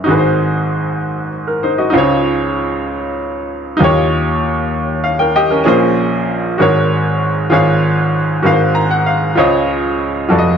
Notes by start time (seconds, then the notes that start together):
0.04 G#1 G#2 D#4 F#4
0.09 G#4 B4
0.18 C5
1.47 A#4
1.63 D#4 C5
1.78 F#4 D#5
1.90 C#2 C#3 D#4 F4
1.95 C5 C#5
3.77 D#2 D#3 D#4 F4
3.82 G4 C#5
5.04 F5
5.19 A#4 G5
5.36 G4 D#5 G5
5.50 C#4 A#4
5.64 A#1 A#2 C#4 G#4 A#4
5.68 C5
6.58 G#1 G#2 F#4 G#4 A#4 C#5
7.50 G#1 G#2 F4 G#4 C#5 F5
8.42 G#1 G#2 F#4 A#4 B4 F5
8.52 C5
8.75 A#5
8.91 F#5
9.06 F5
9.35 C#2 C#3 F4 C5 C#5 D#5
10.29 F1 F2 F4 F#4 A4 D5
10.38 D#5